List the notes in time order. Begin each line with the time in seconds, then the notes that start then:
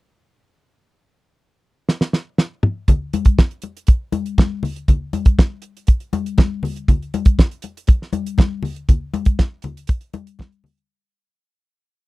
1.89 snare
2.01 snare
2.13 snare
2.38 snare
2.63 mid tom
2.88 kick, closed hi-hat, muted conga, low conga
3.13 closed hi-hat, muted conga, high conga
3.25 kick, closed hi-hat
3.39 kick, snare, muted conga
3.51 closed hi-hat
3.62 closed hi-hat, muted conga
3.77 closed hi-hat
3.87 kick, closed hi-hat
4.12 closed hi-hat, muted conga, high conga
4.26 closed hi-hat
4.38 kick, snare, muted conga, high conga
4.63 open hi-hat, muted conga, low conga
4.76 closed hi-hat
4.88 kick, closed hi-hat, muted conga, low conga
5.13 closed hi-hat, high conga
5.25 kick, closed hi-hat
5.39 kick, snare
5.62 closed hi-hat
5.77 closed hi-hat
5.87 kick, closed hi-hat
6.00 closed hi-hat
6.13 closed hi-hat, muted conga, high conga
6.26 closed hi-hat
6.38 kick, snare, muted conga, high conga
6.63 open hi-hat, low conga
6.76 closed hi-hat
6.88 kick, closed hi-hat, muted conga, low conga
7.02 closed hi-hat
7.14 closed hi-hat, high conga
7.25 kick, closed hi-hat
7.39 kick, snare, muted conga
7.51 closed hi-hat
7.62 closed hi-hat, muted conga
7.77 closed hi-hat
7.87 kick, closed hi-hat, muted conga
8.02 snare
8.13 closed hi-hat, high conga
8.26 closed hi-hat
8.38 kick, snare, high conga
8.63 open hi-hat, muted conga, low conga
8.76 closed hi-hat
8.89 kick, closed hi-hat, low conga
9.14 closed hi-hat, high conga
9.25 kick, closed hi-hat
9.39 kick, snare, muted conga
9.62 closed hi-hat, muted conga, low conga
9.77 closed hi-hat
9.87 kick, closed hi-hat
10.01 closed hi-hat
10.13 closed hi-hat, muted conga, high conga
10.27 closed hi-hat
10.39 kick, snare, high conga
10.52 closed hi-hat
10.64 open hi-hat, low conga
10.77 closed hi-hat